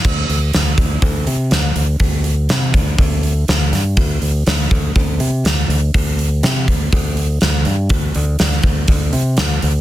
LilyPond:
<<
  \new Staff \with { instrumentName = "Fingered electric bass" } { \clef bass \time 4/4 \key c \lydian \tempo 4 = 122 d,8 d,8 d,8 d,8 d,8 c8 d,8 d,8 | d,4 c8 d,8 d,4 d,8 g,8 | d,8 d,8 d,8 d,8 d,8 c8 d,8 d,8 | d,4 c8 d,8 d,4 d,8 g,8 |
d,8 d,8 d,8 d,8 d,8 c8 d,8 d,8 | }
  \new DrumStaff \with { instrumentName = "Drums" } \drummode { \time 4/4 <cymc bd>8 hho8 <hho sn>8 <hho bd>8 <hho bd>8 hho8 <hho sn>8 hho8 | <hho bd>8 hho8 <hho sn>8 <hho bd>8 <hho bd>8 hho8 <hho sn>8 <hho sn>8 | <hho bd>8 hho8 <hho sn>8 <hho bd>8 <hho bd>8 hho8 <hho sn>8 hho8 | <hho bd>8 hho8 <hho sn>8 <hho bd>8 <hho bd>8 hho8 <hho sn>8 hho8 |
<hho bd>8 hho8 <hho sn>16 sn16 <hho bd>8 <hho bd>8 hho8 <hho sn>8 hho8 | }
>>